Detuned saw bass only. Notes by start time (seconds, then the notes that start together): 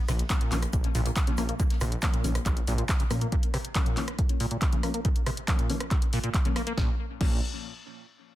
0.09 A#1
0.52 A#1
0.73 A#1
0.95 A#1
1.38 A#1
1.81 A#1
2.24 A#1
2.46 A#1
2.68 A#1
3.11 A#2
6.78 A#1
7.21 A#1